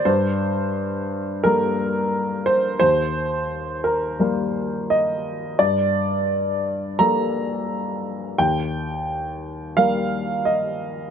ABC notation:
X:1
M:4/4
L:1/8
Q:1/4=87
K:Gm
V:1 name="Grand piano"
c4 B3 c | c3 B3 e2 | d4 b4 | g4 f2 e z |]
V:2 name="Grand piano" clef=bass
G,,4 [G,B,A]4 | E,,4 [G,B,B]4 | G,,4 [G,B,A]4 | E,,4 [G,B,B]4 |]